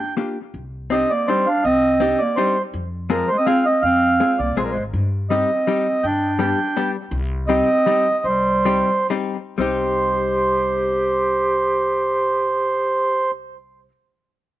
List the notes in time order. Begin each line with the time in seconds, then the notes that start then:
Already playing: D4 G5
0.17 A#3 D4 F4 G4
0.54 C2
0.90 C4 D4 D#4 G4 D#5
1.10 A#3 D5
1.28 G3 C4 D4 D#4 G4 C5
1.47 D4 F5
1.64 C2 C4 D#5
2.00 C4 D4 D#4 G4
2.19 A#3 D5
2.36 G3 C4 D4 D#4 G4 C5
2.74 F2
3.10 F3 G#3 C4 F4 G#4 A#4
3.28 G#3 C5
3.38 C4 D#5
3.46 G#3 C4 F4 G#4 F5
3.66 C4 D#5
3.82 F2 C4 F5
4.20 G#3 C4 F4 G#4
4.39 C2 A#3 D5
4.57 A#1 G#3 C4 F4 G#4 C5
4.64 G3 A#4
4.71 G#3 C5
4.77 G#1
4.93 G2
5.30 G3 C4 D#4 G4 D#5
5.67 G3 C4 D#4 G4
6.04 G2 D4 G5
6.39 G3 B3 D4 G4 G5
6.77 G3 B3 D4 G4
7.11 C2
7.47 G3 C4 D#4 G4 D#5
7.86 G3 C4 D#4 G4
8.24 C2 G3 C5
8.65 G3 C4 D#4 G4
9.10 G3 C4 D#4 G4
9.58 C2 G3 C4 D#4 G4 C5